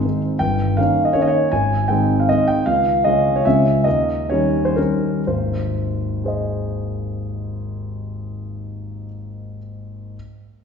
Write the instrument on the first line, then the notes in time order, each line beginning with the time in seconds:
grand piano
Already playing: C5
0.04 D#3 G#3 C4
0.39 G1 G5
0.77 D#3 A#3 C#4 F5
1.05 D#5
1.13 D#3 A#3 C#4 C#5
1.22 D#5
1.27 C#5
1.52 G#1 G#5
1.88 D#3 G#3 C4 G5
2.20 F5
2.29 D#3 G#3 C4 D#5
2.47 G5
2.66 C#2 F5
3.04 C#3 G#3 C#4 D#5
3.36 C#5
3.45 C#2 C#3 G#3 C#4 E5
3.84 D#2 D#5
4.29 D#3 G3 C#4 C#5
4.65 C5
4.76 D#3 G3 C#4 A#4
5.27 G#1 D#2 C5
6.24 G#4 C5 D#5